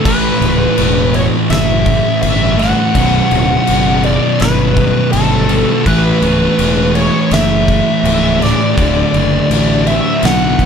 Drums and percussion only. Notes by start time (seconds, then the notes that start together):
0.05 kick, crash
0.42 crash
0.78 crash
1.14 crash
1.50 snare, crash
1.86 kick, crash
2.23 crash
2.59 snare, crash
2.95 kick, crash
3.31 crash
3.67 crash
4.03 crash
4.40 snare, crash
4.77 kick, crash
5.13 crash
5.49 crash
5.86 kick, crash
6.22 crash
6.59 crash
6.95 crash
7.31 snare, crash
7.68 kick, crash
8.05 crash
8.42 snare, crash
8.78 kick, crash
9.14 crash
9.51 crash
9.87 crash
10.23 snare, crash
10.59 kick, crash